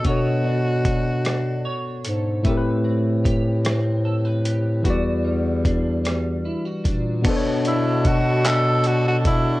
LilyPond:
<<
  \new Staff \with { instrumentName = "Horn section" } { \time 6/8 \key b \minor \tempo 4. = 50 r2. | r2. | r2. | <d' fis' a'>2. | }
  \new Staff \with { instrumentName = "Tenor saxophone" } { \time 6/8 \key b \minor fis'2~ fis'8 r8 | r2. | r2. | r8 e'8 fis'8 a'8 fis'16 fis'16 e'8 | }
  \new Staff \with { instrumentName = "Tine electric piano" } { \time 6/8 \key b \minor <b, b d' a' cis''>2. | <a, a c' g' ais' b'>2. | <e g fis' b' d''>2. | <b, b d' a' c'' cis''>2. | }
  \new Staff \with { instrumentName = "Clean electric guitar" } { \time 6/8 \key b \minor <b d' a' cis''>8 d'8 a'8 d'8 cis''8 a'8 | <a b'>8 c'8 g'8 c'8 a'16 b'16 g'8 | <e fis'>8 g8 d'8 g8 e'16 fis'16 d'8 | b8 d'8 a'8 d'8 a'8 d'8 | }
  \new Staff \with { instrumentName = "Bass clarinet" } { \clef bass \time 6/8 \key b \minor b,2 r8 gis,8 | a,2. | e,2 r8 ais,8 | b,2. | }
  \new DrumStaff \with { instrumentName = "Drums" } \drummode { \time 6/8 <hh bd>4 <hh bd>8 <hh ss>4 hh8 | <hh bd>4 <hh bd>8 <hh ss>4 hh8 | <hh bd>4 <hh bd>8 <hh ss>4 <hh bd>8 | <cymc hh bd>8 hh8 <hh bd>8 <hc hh>8 hh8 <hh bd>8 | }
>>